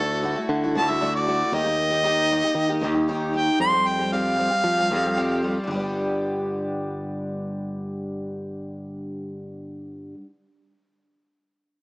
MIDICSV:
0, 0, Header, 1, 4, 480
1, 0, Start_track
1, 0, Key_signature, 1, "major"
1, 0, Tempo, 518583
1, 1414, Time_signature, 4, 2, 24, 8
1, 10941, End_track
2, 0, Start_track
2, 0, Title_t, "Harmonica"
2, 0, Program_c, 0, 22
2, 0, Note_on_c, 0, 69, 95
2, 440, Note_off_c, 0, 69, 0
2, 718, Note_on_c, 0, 81, 93
2, 834, Note_on_c, 0, 76, 82
2, 848, Note_off_c, 0, 81, 0
2, 1057, Note_off_c, 0, 76, 0
2, 1070, Note_on_c, 0, 74, 78
2, 1427, Note_on_c, 0, 75, 111
2, 1441, Note_off_c, 0, 74, 0
2, 2822, Note_off_c, 0, 75, 0
2, 3098, Note_on_c, 0, 79, 89
2, 3328, Note_off_c, 0, 79, 0
2, 3336, Note_on_c, 0, 84, 104
2, 3586, Note_on_c, 0, 79, 85
2, 3600, Note_off_c, 0, 84, 0
2, 3812, Note_off_c, 0, 79, 0
2, 3820, Note_on_c, 0, 77, 106
2, 5219, Note_off_c, 0, 77, 0
2, 10941, End_track
3, 0, Start_track
3, 0, Title_t, "Twelve-string acoustic guitar"
3, 0, Program_c, 1, 25
3, 0, Note_on_c, 1, 50, 72
3, 0, Note_on_c, 1, 57, 71
3, 0, Note_on_c, 1, 64, 68
3, 0, Note_on_c, 1, 66, 84
3, 196, Note_off_c, 1, 50, 0
3, 202, Note_off_c, 1, 57, 0
3, 207, Note_on_c, 1, 50, 64
3, 211, Note_off_c, 1, 64, 0
3, 213, Note_on_c, 1, 57, 69
3, 219, Note_off_c, 1, 66, 0
3, 223, Note_on_c, 1, 64, 70
3, 230, Note_on_c, 1, 66, 74
3, 320, Note_off_c, 1, 66, 0
3, 331, Note_on_c, 1, 66, 58
3, 332, Note_off_c, 1, 50, 0
3, 332, Note_off_c, 1, 64, 0
3, 335, Note_off_c, 1, 57, 0
3, 343, Note_on_c, 1, 64, 43
3, 353, Note_on_c, 1, 57, 40
3, 573, Note_off_c, 1, 66, 0
3, 579, Note_off_c, 1, 64, 0
3, 584, Note_off_c, 1, 57, 0
3, 588, Note_on_c, 1, 66, 50
3, 598, Note_on_c, 1, 64, 47
3, 607, Note_on_c, 1, 57, 36
3, 688, Note_off_c, 1, 57, 0
3, 695, Note_on_c, 1, 50, 53
3, 698, Note_off_c, 1, 64, 0
3, 699, Note_on_c, 1, 57, 62
3, 702, Note_off_c, 1, 66, 0
3, 709, Note_on_c, 1, 64, 62
3, 715, Note_on_c, 1, 66, 64
3, 813, Note_off_c, 1, 66, 0
3, 815, Note_off_c, 1, 50, 0
3, 817, Note_off_c, 1, 57, 0
3, 818, Note_off_c, 1, 64, 0
3, 824, Note_on_c, 1, 66, 44
3, 830, Note_on_c, 1, 64, 47
3, 839, Note_on_c, 1, 57, 37
3, 930, Note_off_c, 1, 64, 0
3, 933, Note_off_c, 1, 57, 0
3, 936, Note_on_c, 1, 50, 78
3, 939, Note_off_c, 1, 66, 0
3, 941, Note_on_c, 1, 64, 77
3, 944, Note_on_c, 1, 57, 76
3, 951, Note_on_c, 1, 66, 79
3, 1161, Note_off_c, 1, 50, 0
3, 1166, Note_off_c, 1, 57, 0
3, 1173, Note_on_c, 1, 50, 58
3, 1174, Note_off_c, 1, 66, 0
3, 1177, Note_on_c, 1, 57, 66
3, 1178, Note_off_c, 1, 64, 0
3, 1185, Note_on_c, 1, 66, 68
3, 1187, Note_on_c, 1, 64, 60
3, 1407, Note_off_c, 1, 50, 0
3, 1410, Note_off_c, 1, 57, 0
3, 1411, Note_off_c, 1, 64, 0
3, 1411, Note_on_c, 1, 51, 76
3, 1414, Note_on_c, 1, 58, 79
3, 1415, Note_off_c, 1, 66, 0
3, 1415, Note_on_c, 1, 63, 70
3, 1419, Note_on_c, 1, 67, 74
3, 1506, Note_off_c, 1, 67, 0
3, 1517, Note_on_c, 1, 67, 49
3, 1519, Note_off_c, 1, 63, 0
3, 1529, Note_off_c, 1, 58, 0
3, 1530, Note_on_c, 1, 63, 42
3, 1532, Note_off_c, 1, 51, 0
3, 1540, Note_on_c, 1, 58, 38
3, 1750, Note_off_c, 1, 67, 0
3, 1755, Note_off_c, 1, 63, 0
3, 1761, Note_on_c, 1, 67, 46
3, 1767, Note_off_c, 1, 58, 0
3, 1767, Note_on_c, 1, 63, 42
3, 1778, Note_on_c, 1, 58, 37
3, 1874, Note_off_c, 1, 58, 0
3, 1880, Note_on_c, 1, 51, 70
3, 1881, Note_off_c, 1, 63, 0
3, 1886, Note_on_c, 1, 58, 68
3, 1887, Note_off_c, 1, 67, 0
3, 1892, Note_on_c, 1, 63, 75
3, 1896, Note_on_c, 1, 67, 83
3, 2122, Note_off_c, 1, 51, 0
3, 2127, Note_off_c, 1, 58, 0
3, 2130, Note_off_c, 1, 63, 0
3, 2133, Note_on_c, 1, 51, 63
3, 2135, Note_off_c, 1, 67, 0
3, 2138, Note_on_c, 1, 58, 64
3, 2142, Note_on_c, 1, 63, 63
3, 2151, Note_on_c, 1, 67, 62
3, 2246, Note_off_c, 1, 67, 0
3, 2253, Note_off_c, 1, 51, 0
3, 2254, Note_off_c, 1, 63, 0
3, 2256, Note_off_c, 1, 58, 0
3, 2257, Note_on_c, 1, 67, 58
3, 2265, Note_on_c, 1, 63, 46
3, 2279, Note_on_c, 1, 58, 41
3, 2480, Note_off_c, 1, 67, 0
3, 2485, Note_off_c, 1, 63, 0
3, 2491, Note_on_c, 1, 67, 48
3, 2496, Note_on_c, 1, 63, 51
3, 2499, Note_off_c, 1, 58, 0
3, 2510, Note_on_c, 1, 58, 46
3, 2601, Note_off_c, 1, 58, 0
3, 2611, Note_off_c, 1, 63, 0
3, 2612, Note_off_c, 1, 67, 0
3, 2612, Note_on_c, 1, 51, 70
3, 2612, Note_on_c, 1, 58, 67
3, 2622, Note_on_c, 1, 63, 70
3, 2628, Note_on_c, 1, 67, 77
3, 2709, Note_off_c, 1, 67, 0
3, 2715, Note_off_c, 1, 63, 0
3, 2720, Note_on_c, 1, 67, 50
3, 2726, Note_on_c, 1, 63, 52
3, 2729, Note_off_c, 1, 58, 0
3, 2732, Note_off_c, 1, 51, 0
3, 2740, Note_on_c, 1, 58, 44
3, 2844, Note_off_c, 1, 58, 0
3, 2846, Note_off_c, 1, 63, 0
3, 2846, Note_off_c, 1, 67, 0
3, 2848, Note_on_c, 1, 51, 72
3, 2855, Note_on_c, 1, 58, 77
3, 2857, Note_on_c, 1, 63, 86
3, 2860, Note_on_c, 1, 67, 85
3, 3071, Note_off_c, 1, 51, 0
3, 3079, Note_off_c, 1, 58, 0
3, 3082, Note_on_c, 1, 51, 58
3, 3088, Note_off_c, 1, 63, 0
3, 3090, Note_on_c, 1, 58, 59
3, 3094, Note_off_c, 1, 67, 0
3, 3099, Note_on_c, 1, 63, 56
3, 3105, Note_on_c, 1, 67, 61
3, 3320, Note_off_c, 1, 51, 0
3, 3324, Note_on_c, 1, 53, 74
3, 3329, Note_off_c, 1, 58, 0
3, 3332, Note_on_c, 1, 55, 67
3, 3333, Note_off_c, 1, 67, 0
3, 3334, Note_off_c, 1, 63, 0
3, 3337, Note_on_c, 1, 60, 71
3, 3344, Note_on_c, 1, 67, 69
3, 3432, Note_off_c, 1, 67, 0
3, 3443, Note_off_c, 1, 60, 0
3, 3443, Note_on_c, 1, 67, 46
3, 3448, Note_off_c, 1, 53, 0
3, 3452, Note_off_c, 1, 55, 0
3, 3454, Note_on_c, 1, 60, 44
3, 3467, Note_on_c, 1, 55, 37
3, 3683, Note_off_c, 1, 67, 0
3, 3693, Note_off_c, 1, 60, 0
3, 3694, Note_on_c, 1, 67, 48
3, 3700, Note_off_c, 1, 55, 0
3, 3704, Note_on_c, 1, 60, 40
3, 3714, Note_on_c, 1, 55, 39
3, 3809, Note_off_c, 1, 55, 0
3, 3811, Note_off_c, 1, 60, 0
3, 3813, Note_off_c, 1, 67, 0
3, 3815, Note_on_c, 1, 53, 77
3, 3820, Note_on_c, 1, 55, 66
3, 3822, Note_on_c, 1, 60, 72
3, 3830, Note_on_c, 1, 67, 75
3, 4031, Note_off_c, 1, 53, 0
3, 4042, Note_on_c, 1, 53, 56
3, 4043, Note_off_c, 1, 55, 0
3, 4047, Note_off_c, 1, 60, 0
3, 4054, Note_off_c, 1, 67, 0
3, 4054, Note_on_c, 1, 55, 52
3, 4058, Note_on_c, 1, 60, 56
3, 4065, Note_on_c, 1, 67, 57
3, 4155, Note_off_c, 1, 67, 0
3, 4166, Note_on_c, 1, 67, 44
3, 4167, Note_off_c, 1, 53, 0
3, 4170, Note_off_c, 1, 60, 0
3, 4173, Note_off_c, 1, 55, 0
3, 4182, Note_on_c, 1, 60, 42
3, 4188, Note_on_c, 1, 55, 35
3, 4403, Note_off_c, 1, 67, 0
3, 4414, Note_on_c, 1, 67, 51
3, 4417, Note_off_c, 1, 60, 0
3, 4420, Note_off_c, 1, 55, 0
3, 4433, Note_on_c, 1, 60, 49
3, 4441, Note_on_c, 1, 55, 44
3, 4533, Note_off_c, 1, 67, 0
3, 4537, Note_off_c, 1, 55, 0
3, 4538, Note_on_c, 1, 53, 61
3, 4540, Note_off_c, 1, 60, 0
3, 4548, Note_on_c, 1, 55, 62
3, 4551, Note_on_c, 1, 60, 74
3, 4557, Note_on_c, 1, 67, 71
3, 4653, Note_off_c, 1, 67, 0
3, 4655, Note_off_c, 1, 53, 0
3, 4660, Note_off_c, 1, 55, 0
3, 4662, Note_off_c, 1, 60, 0
3, 4664, Note_on_c, 1, 67, 54
3, 4679, Note_on_c, 1, 60, 47
3, 4686, Note_on_c, 1, 55, 46
3, 4769, Note_off_c, 1, 55, 0
3, 4776, Note_off_c, 1, 67, 0
3, 4778, Note_off_c, 1, 60, 0
3, 4778, Note_on_c, 1, 53, 76
3, 4780, Note_on_c, 1, 55, 86
3, 4787, Note_on_c, 1, 67, 89
3, 4789, Note_on_c, 1, 60, 79
3, 5012, Note_off_c, 1, 53, 0
3, 5016, Note_off_c, 1, 55, 0
3, 5020, Note_off_c, 1, 67, 0
3, 5021, Note_off_c, 1, 60, 0
3, 5024, Note_on_c, 1, 53, 59
3, 5034, Note_on_c, 1, 55, 70
3, 5039, Note_on_c, 1, 60, 61
3, 5047, Note_on_c, 1, 67, 61
3, 5216, Note_on_c, 1, 43, 67
3, 5250, Note_on_c, 1, 50, 70
3, 5258, Note_off_c, 1, 53, 0
3, 5263, Note_off_c, 1, 55, 0
3, 5265, Note_off_c, 1, 60, 0
3, 5269, Note_off_c, 1, 67, 0
3, 5282, Note_on_c, 1, 55, 66
3, 5310, Note_on_c, 1, 59, 68
3, 5331, Note_on_c, 1, 62, 76
3, 5362, Note_on_c, 1, 67, 70
3, 9381, Note_off_c, 1, 43, 0
3, 9414, Note_off_c, 1, 50, 0
3, 9447, Note_off_c, 1, 55, 0
3, 9474, Note_off_c, 1, 59, 0
3, 9496, Note_off_c, 1, 62, 0
3, 9527, Note_off_c, 1, 67, 0
3, 10941, End_track
4, 0, Start_track
4, 0, Title_t, "Fingered electric bass"
4, 0, Program_c, 2, 33
4, 0, Note_on_c, 2, 38, 90
4, 319, Note_off_c, 2, 38, 0
4, 453, Note_on_c, 2, 50, 84
4, 697, Note_on_c, 2, 38, 98
4, 711, Note_off_c, 2, 50, 0
4, 1314, Note_off_c, 2, 38, 0
4, 1408, Note_on_c, 2, 39, 88
4, 2234, Note_off_c, 2, 39, 0
4, 2358, Note_on_c, 2, 51, 81
4, 2605, Note_on_c, 2, 39, 91
4, 2619, Note_off_c, 2, 51, 0
4, 3226, Note_off_c, 2, 39, 0
4, 3330, Note_on_c, 2, 41, 97
4, 4155, Note_off_c, 2, 41, 0
4, 4293, Note_on_c, 2, 53, 77
4, 4542, Note_on_c, 2, 41, 87
4, 4555, Note_off_c, 2, 53, 0
4, 5156, Note_off_c, 2, 41, 0
4, 5255, Note_on_c, 2, 31, 74
4, 9383, Note_off_c, 2, 31, 0
4, 10941, End_track
0, 0, End_of_file